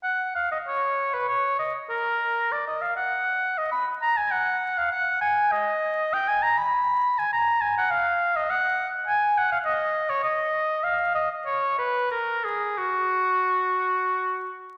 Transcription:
X:1
M:3/4
L:1/16
Q:1/4=99
K:Ebm
V:1 name="Oboe"
g2 f e d3 c d2 e2 | B4 =d e f g4 e | c'2 b a g3 f g2 a2 | e4 =g a b c'4 a |
[K:F#] a2 g f e3 d f3 z | g2 f e d3 c d4 | e2 d2 c2 B2 A2 G2 | F8- F2 z2 |]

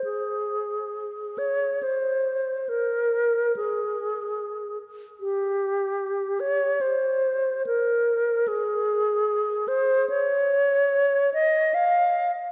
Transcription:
X:1
M:3/4
L:1/8
Q:1/4=72
K:Ab
V:1 name="Alto flute"
A3 d c2 | B2 A3 z | G3 d c2 | B2 A3 c |
d3 e f z |]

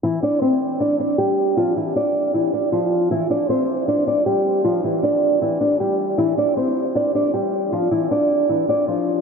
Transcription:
X:1
M:4/4
L:1/8
Q:1/4=156
K:Gdor
V:1 name="Nylon-string guitar"
[E,E] [Dd] [Cc]2 [Dd] [Dd] [G,G]2 | [F,F] [E,E] [Dd]2 [E,E] [Dd] [F,F]2 | [E,E] [Dd] [Cc]2 [Dd] [Dd] [G,G]2 | [F,F] [E,E] [Dd]2 [E,E] [Dd] [G,G]2 |
[E,E] [Dd] [Cc]2 [Dd] [Dd] [G,G]2 | [F,F] [E,E] [Dd]2 [E,E] [Dd] [F,F]2 |]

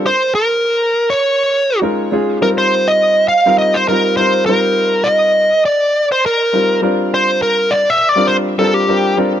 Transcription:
X:1
M:4/4
L:1/16
Q:"Swing 16ths" 1/4=102
K:Cdor
V:1 name="Lead electric guitar"
c2 B4- B _d4- d z4 | B c2 e3 f2 e c B2 c2 B2- | B2 e4 d3 c B4 z2 | c2 B2 (3d2 =e2 d2 c2 A G3 z2 |]
V:2 name="Grand piano"
z12 [_A,_DEFB]2 [A,DEF_A]2 | [G,CEFB]6 z [G,CEFB]2 z [G,CEFB]2 [G,CEFB]2 [G,CEFc]2- | [G,CEFc]4- [G,CEFc] z6 z [G,CEFB]2 [G,CDFB]2- | [G,CDFB]4- [G,CDFB] z2 [G,CDFB]2 z [G,CDFB]2 [G,CDFB]2 [G,CDFB]2 |]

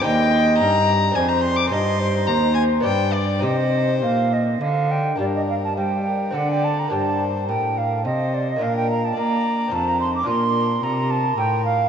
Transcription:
X:1
M:3/4
L:1/16
Q:1/4=107
K:Cm
V:1 name="Flute"
e8 c4 | e2 c6 d4 | e4 f2 e2 f2 g2 | [K:Gm] d e f a g4 ^f g a b |
a4 g2 f2 e2 d e | f g b a b4 a b c' d' | c'4 b2 a2 g2 f2 |]
V:2 name="Violin"
g4 b4 a b c' d' | c'4 b2 a2 g2 d2 | c8 z4 | [K:Gm] B4 c2 B2 d4 |
c4 B4 c4 | B4 d4 c4 | B12 |]
V:3 name="Lute"
[CEc]8 [CDA]4 | [CEG]8 [=B,DG]4 | [CEG]12 | [K:Gm] [B,DG]8 [CDA]4 |
[B,DG]12 | [B,DF]8 [CEF]4 | [B,DF]12 |]
V:4 name="Lute" clef=bass
E,,4 G,,4 F,,4 | G,,4 E,,4 G,,4 | C,4 B,,4 D,4 | [K:Gm] G,,4 G,4 D,4 |
G,,4 A,,4 C,4 | B,,4 B,4 F,,4 | B,,4 C,4 A,,4 |]
V:5 name="Cello" clef=bass
E,,4 G,,4 F,,4 | G,,4 E,,4 G,,4 | C,4 B,,4 D,4 | [K:Gm] G,,4 G,4 D,4 |
G,,4 A,,4 C,4 | B,,4 B,4 F,,4 | B,,4 C,4 A,,4 |]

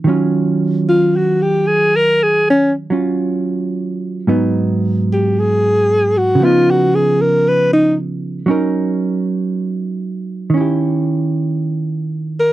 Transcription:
X:1
M:4/4
L:1/16
Q:"Swing" 1/4=58
K:D#m
V:1 name="Alto saxophone"
z3 E F =G ^G A G C z6 | z3 =G ^G3 F E F G A B D z2 | z12 z3 A |]
V:2 name="Hollow-body jazz guitar"
[D,F,CE]8- [D,F,CE]2 [F,CE]6 | [G,,F,B,D]8 [C,E,B,D]8 | [F,CDA]8 [D,C=E=G]8 |]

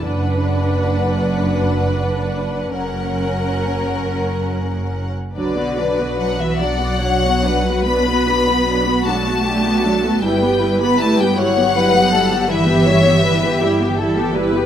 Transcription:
X:1
M:12/8
L:1/16
Q:3/8=49
K:Bm
V:1 name="Violin section"
f12 f8- f3 z | d4 f e f6 b6 a6 | g3 b a g f6 e8- e2 z2 |]
V:2 name="Violin section"
B12 ^A8- A3 z | B6 d2 c2 B8 F2 G2 A2 | B6 c2 B2 A2 B2 c2 B2 G2 A2 B2 |]
V:3 name="Viola section"
D12 C8- C3 z | [F,D] [B,F] [F,D] [B,F] [F,D] [B,F] [F,D] [B,F] [F,D] [B,F] [F,D] [B,F] [F,D] [B,F] [F,D] [B,F] [F,D] [B,F] [F,D] [B,F] [F,D] [B,F] [F,D] [B,F] | [G,E] [B,G] [G,E] [B,G] [G,E] [B,G] [G,E] [B,G] [G,E] [B,G] [G,E] [B,G] [G,E] [B,G] [G,E] [B,G] [G,E] [B,G] [G,E] [B,G] [G,E] [B,G] [G,E] [B,G] |]
V:4 name="Cello section" clef=bass
F,,12 F,,8- F,,3 z | D,4 F, E, F,6 B,6 A,6 | G,3 B, A, G, F,6 E,8- E,2 z2 |]
V:5 name="Double bass section" clef=bass
F,,,12 F,,,8- F,,,3 z | B,,,24 | G,,,24 |]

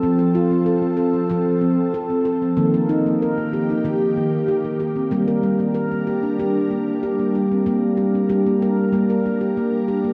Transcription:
X:1
M:4/4
L:1/16
Q:1/4=94
K:Gm
V:1 name="Ambient pad"
[F,CA]16 | [E,B,G]16 | [G,DB]16 | [G,DB]16 |]
V:2 name="Handpan"
C A2 C A C A C A2 C2 A C A C | B, B2 B, B B, G E G2 B,2 G B, G C | B, B2 B, B B, G D G2 B,2 G B, G C | B,2 G D G B, B2 B, B B, G B,2 G B, |]
V:3 name="Handpan" clef=bass
F,2 F6 F,2 z6 | E,2 E6 E,2 z6 | G,2 G,6 G,2 z6 | G,4 G,4 G,8 |]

